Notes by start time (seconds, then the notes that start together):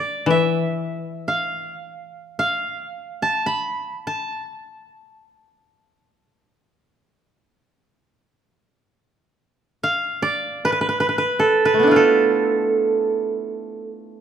Already playing: D5
0.26 E3
0.30 E5
1.28 F5
2.39 F5
3.22 A5
3.46 B5
4.07 A5
9.83 F5
10.22 D5
10.65 B4
10.72 B4
10.81 B4
10.89 B4
11.00 B4
11.09 B4
11.18 B4
11.39 A4
11.65 B4
11.74 A3
11.79 B3 D4
11.87 E4 F4
11.96 A4